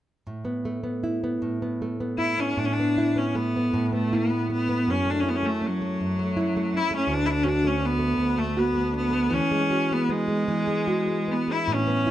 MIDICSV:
0, 0, Header, 1, 3, 480
1, 0, Start_track
1, 0, Key_signature, 3, "major"
1, 0, Tempo, 768246
1, 164, Time_signature, 3, 2, 24, 8
1, 3522, Tempo, 736196
1, 5442, Tempo, 756620
1, 6402, Tempo, 796813
1, 7615, End_track
2, 0, Start_track
2, 0, Title_t, "Cello"
2, 0, Program_c, 0, 42
2, 1365, Note_on_c, 0, 64, 54
2, 1500, Note_on_c, 0, 61, 50
2, 1509, Note_off_c, 0, 64, 0
2, 1614, Note_on_c, 0, 62, 62
2, 1623, Note_off_c, 0, 61, 0
2, 1662, Note_on_c, 0, 61, 53
2, 1671, Note_off_c, 0, 62, 0
2, 1704, Note_on_c, 0, 62, 62
2, 1713, Note_off_c, 0, 61, 0
2, 1985, Note_on_c, 0, 61, 55
2, 1994, Note_off_c, 0, 62, 0
2, 2095, Note_on_c, 0, 59, 62
2, 2104, Note_off_c, 0, 61, 0
2, 2453, Note_off_c, 0, 59, 0
2, 2464, Note_on_c, 0, 57, 56
2, 2598, Note_on_c, 0, 59, 56
2, 2607, Note_off_c, 0, 57, 0
2, 2826, Note_off_c, 0, 59, 0
2, 2829, Note_on_c, 0, 59, 59
2, 3062, Note_on_c, 0, 61, 67
2, 3071, Note_off_c, 0, 59, 0
2, 3188, Note_on_c, 0, 62, 62
2, 3197, Note_off_c, 0, 61, 0
2, 3247, Note_on_c, 0, 61, 58
2, 3256, Note_off_c, 0, 62, 0
2, 3304, Note_on_c, 0, 59, 57
2, 3314, Note_off_c, 0, 61, 0
2, 3347, Note_on_c, 0, 61, 60
2, 3356, Note_off_c, 0, 59, 0
2, 3407, Note_on_c, 0, 57, 65
2, 3417, Note_off_c, 0, 61, 0
2, 3540, Note_on_c, 0, 54, 65
2, 3550, Note_off_c, 0, 57, 0
2, 4259, Note_on_c, 0, 64, 77
2, 4269, Note_off_c, 0, 54, 0
2, 4374, Note_off_c, 0, 64, 0
2, 4386, Note_on_c, 0, 61, 72
2, 4497, Note_on_c, 0, 62, 81
2, 4507, Note_off_c, 0, 61, 0
2, 4580, Note_on_c, 0, 64, 54
2, 4589, Note_off_c, 0, 62, 0
2, 4608, Note_on_c, 0, 62, 86
2, 4618, Note_off_c, 0, 64, 0
2, 4693, Note_on_c, 0, 61, 57
2, 4703, Note_off_c, 0, 62, 0
2, 4725, Note_on_c, 0, 62, 83
2, 4735, Note_off_c, 0, 61, 0
2, 4847, Note_on_c, 0, 61, 74
2, 4856, Note_off_c, 0, 62, 0
2, 4964, Note_on_c, 0, 59, 74
2, 4974, Note_off_c, 0, 61, 0
2, 5311, Note_on_c, 0, 57, 66
2, 5321, Note_off_c, 0, 59, 0
2, 5444, Note_on_c, 0, 59, 66
2, 5454, Note_off_c, 0, 57, 0
2, 5681, Note_off_c, 0, 59, 0
2, 5685, Note_on_c, 0, 59, 67
2, 5920, Note_on_c, 0, 61, 73
2, 5930, Note_off_c, 0, 59, 0
2, 6295, Note_on_c, 0, 59, 65
2, 6304, Note_off_c, 0, 61, 0
2, 6408, Note_on_c, 0, 56, 70
2, 6417, Note_off_c, 0, 59, 0
2, 7135, Note_on_c, 0, 59, 59
2, 7144, Note_off_c, 0, 56, 0
2, 7261, Note_on_c, 0, 64, 60
2, 7270, Note_off_c, 0, 59, 0
2, 7391, Note_on_c, 0, 61, 69
2, 7400, Note_off_c, 0, 64, 0
2, 7615, Note_off_c, 0, 61, 0
2, 7615, End_track
3, 0, Start_track
3, 0, Title_t, "Nylon-string guitar"
3, 0, Program_c, 1, 24
3, 167, Note_on_c, 1, 45, 47
3, 280, Note_on_c, 1, 59, 40
3, 408, Note_on_c, 1, 57, 42
3, 519, Note_off_c, 1, 59, 0
3, 522, Note_on_c, 1, 59, 38
3, 647, Note_on_c, 1, 64, 44
3, 770, Note_off_c, 1, 59, 0
3, 773, Note_on_c, 1, 59, 44
3, 879, Note_off_c, 1, 45, 0
3, 887, Note_on_c, 1, 45, 56
3, 1011, Note_off_c, 1, 59, 0
3, 1014, Note_on_c, 1, 59, 48
3, 1133, Note_off_c, 1, 57, 0
3, 1136, Note_on_c, 1, 57, 45
3, 1250, Note_off_c, 1, 59, 0
3, 1252, Note_on_c, 1, 59, 45
3, 1361, Note_off_c, 1, 64, 0
3, 1363, Note_on_c, 1, 64, 45
3, 1486, Note_off_c, 1, 59, 0
3, 1489, Note_on_c, 1, 59, 34
3, 1600, Note_off_c, 1, 45, 0
3, 1607, Note_on_c, 1, 45, 51
3, 1744, Note_off_c, 1, 59, 0
3, 1746, Note_on_c, 1, 59, 41
3, 1765, Note_off_c, 1, 57, 0
3, 1859, Note_off_c, 1, 64, 0
3, 1861, Note_on_c, 1, 64, 45
3, 1966, Note_off_c, 1, 59, 0
3, 1973, Note_on_c, 1, 59, 41
3, 2095, Note_on_c, 1, 57, 42
3, 2210, Note_off_c, 1, 59, 0
3, 2226, Note_on_c, 1, 59, 40
3, 2327, Note_off_c, 1, 45, 0
3, 2334, Note_on_c, 1, 45, 53
3, 2445, Note_off_c, 1, 59, 0
3, 2453, Note_on_c, 1, 59, 42
3, 2576, Note_off_c, 1, 64, 0
3, 2579, Note_on_c, 1, 64, 47
3, 2685, Note_off_c, 1, 59, 0
3, 2693, Note_on_c, 1, 59, 42
3, 2807, Note_off_c, 1, 57, 0
3, 2809, Note_on_c, 1, 57, 42
3, 2923, Note_off_c, 1, 59, 0
3, 2930, Note_on_c, 1, 59, 41
3, 3045, Note_on_c, 1, 42, 61
3, 3051, Note_off_c, 1, 45, 0
3, 3095, Note_off_c, 1, 59, 0
3, 3157, Note_off_c, 1, 57, 0
3, 3157, Note_on_c, 1, 57, 46
3, 3268, Note_off_c, 1, 64, 0
3, 3271, Note_on_c, 1, 64, 50
3, 3390, Note_off_c, 1, 57, 0
3, 3393, Note_on_c, 1, 57, 45
3, 3508, Note_on_c, 1, 61, 40
3, 3637, Note_off_c, 1, 57, 0
3, 3640, Note_on_c, 1, 57, 43
3, 3756, Note_off_c, 1, 42, 0
3, 3764, Note_on_c, 1, 42, 54
3, 3881, Note_off_c, 1, 57, 0
3, 3884, Note_on_c, 1, 57, 48
3, 3990, Note_off_c, 1, 64, 0
3, 3998, Note_on_c, 1, 64, 54
3, 4126, Note_off_c, 1, 57, 0
3, 4129, Note_on_c, 1, 57, 46
3, 4233, Note_off_c, 1, 61, 0
3, 4241, Note_on_c, 1, 61, 45
3, 4349, Note_off_c, 1, 57, 0
3, 4352, Note_on_c, 1, 57, 47
3, 4455, Note_off_c, 1, 42, 0
3, 4458, Note_on_c, 1, 38, 69
3, 4528, Note_off_c, 1, 64, 0
3, 4530, Note_off_c, 1, 61, 0
3, 4584, Note_off_c, 1, 57, 0
3, 4587, Note_on_c, 1, 57, 50
3, 4703, Note_on_c, 1, 66, 56
3, 4821, Note_off_c, 1, 57, 0
3, 4828, Note_on_c, 1, 57, 46
3, 4936, Note_on_c, 1, 62, 46
3, 5049, Note_off_c, 1, 57, 0
3, 5057, Note_on_c, 1, 57, 45
3, 5169, Note_off_c, 1, 38, 0
3, 5176, Note_on_c, 1, 38, 55
3, 5299, Note_off_c, 1, 57, 0
3, 5307, Note_on_c, 1, 57, 47
3, 5431, Note_off_c, 1, 66, 0
3, 5434, Note_on_c, 1, 66, 51
3, 5534, Note_off_c, 1, 57, 0
3, 5542, Note_on_c, 1, 57, 45
3, 5652, Note_off_c, 1, 62, 0
3, 5660, Note_on_c, 1, 62, 46
3, 5765, Note_off_c, 1, 57, 0
3, 5773, Note_on_c, 1, 57, 41
3, 5901, Note_on_c, 1, 52, 60
3, 5954, Note_off_c, 1, 57, 0
3, 5956, Note_off_c, 1, 38, 0
3, 5957, Note_off_c, 1, 62, 0
3, 6034, Note_on_c, 1, 56, 43
3, 6053, Note_off_c, 1, 66, 0
3, 6154, Note_on_c, 1, 66, 50
3, 6278, Note_off_c, 1, 56, 0
3, 6287, Note_on_c, 1, 56, 40
3, 6401, Note_on_c, 1, 59, 41
3, 6506, Note_off_c, 1, 56, 0
3, 6513, Note_on_c, 1, 56, 38
3, 6632, Note_off_c, 1, 52, 0
3, 6635, Note_on_c, 1, 52, 52
3, 6744, Note_off_c, 1, 56, 0
3, 6751, Note_on_c, 1, 56, 42
3, 6865, Note_off_c, 1, 66, 0
3, 6872, Note_on_c, 1, 66, 46
3, 6985, Note_off_c, 1, 56, 0
3, 6993, Note_on_c, 1, 56, 37
3, 7113, Note_off_c, 1, 59, 0
3, 7116, Note_on_c, 1, 59, 37
3, 7228, Note_off_c, 1, 56, 0
3, 7235, Note_on_c, 1, 56, 40
3, 7355, Note_on_c, 1, 45, 58
3, 7409, Note_off_c, 1, 56, 0
3, 7410, Note_off_c, 1, 66, 0
3, 7474, Note_off_c, 1, 59, 0
3, 7474, Note_on_c, 1, 59, 43
3, 7589, Note_on_c, 1, 64, 48
3, 7615, Note_off_c, 1, 45, 0
3, 7615, Note_off_c, 1, 52, 0
3, 7615, Note_off_c, 1, 59, 0
3, 7615, Note_off_c, 1, 64, 0
3, 7615, End_track
0, 0, End_of_file